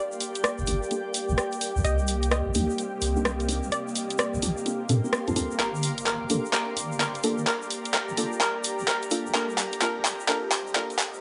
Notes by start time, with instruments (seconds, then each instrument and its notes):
Already playing: string machine A#3 G4, ambient pad G4 D5 G5, synth pluck D5
0.12 shaker
0.20 open hi-hat, shaker
0.35 closed hi-hat, shaker
0.44 synth pluck D5, cross-stick, closed hi-hat, shaker
0.58 wobble bass F1, shaker
0.67 wobble bass G1, synth stab A#3 D4 F4 A4, open hi-hat, shaker
0.83 shaker
0.91 synth stab A#3 D4 F4 A4, closed hi-hat, shaker
1.14 open hi-hat, shaker
1.29 wobble bass G1, shaker
1.38 cross-stick, closed hi-hat, shaker
1.52 closed hi-hat, shaker
1.61 ambient pad C4, open hi-hat, shaker
1.76 wobble bass C2, shaker
1.84 wobble bass C2, synth pluck D#5, closed hi-hat, shaker
1.99 shaker
2.07 open hi-hat, shaker
2.23 ambient pad D#5, closed hi-hat, shaker
2.31 synth pluck D#5, cross-stick, closed hi-hat, shaker
2.46 wobble bass A#1
2.54 wobble bass C2, synth stab A#3 D4 D#4 G4, open hi-hat, shaker
2.70 shaker
2.78 closed hi-hat, shaker
3.02 wobble bass C2, open hi-hat, shaker
3.16 synth stab A#3 D4 D#4 G4, shaker
3.25 cross-stick, closed hi-hat, shaker
3.40 closed hi-hat, shaker
3.49 synth stab A#3 D4 D#4 G4, open hi-hat, shaker
3.63 shaker
3.72 ambient pad A#4, synth pluck D5, closed hi-hat, shaker
3.76 ambient pad F5
3.88 shaker
3.96 open hi-hat, shaker
4.03 ambient pad C6
4.10 closed hi-hat, shaker
4.18 synth pluck D5, cross-stick, closed hi-hat, shaker
4.34 wobble bass A#1, shaker
4.42 wobble bass A#1, synth stab C4 D4 F4 A4, open hi-hat, shaker
4.49 ambient pad D6
4.57 shaker
4.66 synth stab C4 D4 F4 A4, closed hi-hat, shaker
4.89 wobble bass A#2, synth stab C4 D4 F4 A4, open hi-hat, shaker
5.04 synth stab C4 D4 F4 A#4, shaker
5.13 cross-stick, closed hi-hat, shaker
5.28 wobble bass D2, synth stab C4 D4 F4 A4, closed hi-hat, shaker
5.36 wobble bass D2, synth stab C4 D4 F4 A4, open hi-hat, shaker
5.51 shaker
5.59 wobble bass G1, ambient pad G4, synth pluck A#4, clap, closed hi-hat, shaker
5.70 ambient pad D5
5.75 shaker
5.83 open hi-hat, shaker
5.98 closed hi-hat, shaker
6.06 synth pluck A#4, clap, closed hi-hat, shaker
6.17 ambient pad A#5
6.21 wobble bass F1
6.30 wobble bass G1, synth stab A#3 D4 F4 A4, open hi-hat, shaker
6.45 shaker
6.53 synth pluck A#4, clap, closed hi-hat, shaker
6.77 wobble bass G1, open hi-hat, shaker
6.92 shaker
7.00 synth pluck A#4, clap, closed hi-hat, shaker
7.15 closed hi-hat, shaker
7.24 synth stab A#3 D4 F4 A4, open hi-hat, shaker
7.38 shaker
7.47 synth pluck A#4, clap, closed hi-hat, shaker
7.62 shaker
7.70 open hi-hat, shaker
7.85 closed hi-hat, shaker
7.93 synth pluck A#4, clap, closed hi-hat, shaker
8.09 wobble bass F1, shaker
8.17 wobble bass G1, synth stab A#3 D4 F4 A4, open hi-hat, shaker
8.32 shaker
8.41 synth pluck A#4, clap, closed hi-hat, shaker
8.64 open hi-hat, shaker
8.79 wobble bass G1, shaker
8.88 synth pluck A#4, clap, closed hi-hat, shaker
9.03 closed hi-hat, shaker
9.11 synth stab A#3 D4 F4 A4, ambient pad C4, open hi-hat, shaker
9.26 wobble bass C2, shaker
9.35 wobble bass C2, synth stab A#3 D4 F4 A4, synth pluck A#4, clap, closed hi-hat, shaker
9.49 shaker
9.58 clap, open hi-hat, shaker
9.72 closed hi-hat, shaker
9.77 ambient pad D#5
9.81 synth stab A#3 D4 F4 A4, synth pluck A#4, clap, closed hi-hat, shaker
9.96 wobble bass A#1
10.05 wobble bass C2, clap, open hi-hat, shaker
10.20 shaker
10.28 synth stab A#3 D4 F4 A4, synth pluck A#4, clap, closed hi-hat, shaker
10.52 wobble bass C2, clap, open hi-hat, shaker
10.67 shaker
10.75 synth stab A#3 D4 F4 A4, synth pluck A#4, clap, closed hi-hat, shaker
10.90 closed hi-hat, shaker
10.99 clap, open hi-hat, shaker
11.14 shaker